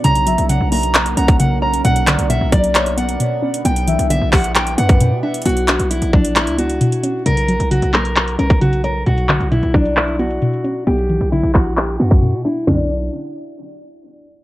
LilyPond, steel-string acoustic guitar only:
\new Staff \with { instrumentName = "Steel-string acoustic guitar" } { \time 4/4 \key b \minor \tempo 4 = 133 ais''4 fis''8 ais''4 ais''8 fis''8 ais''8 | fis''4 e''8 d''8 e''8 fis''4. | g''4 e''8 fis''8 g''8 fis''4 e''8 | fis'4 e'8 d'8 e'8 fis'4. |
ais'4 fis'8 ais'4 ais'8 fis'8 ais'8 | fis'4 e'8 d'8 e'8 fis'4. | g'4 e'8 fis'8 g'8 fis'4 e'8 | d'8 r2. r8 | }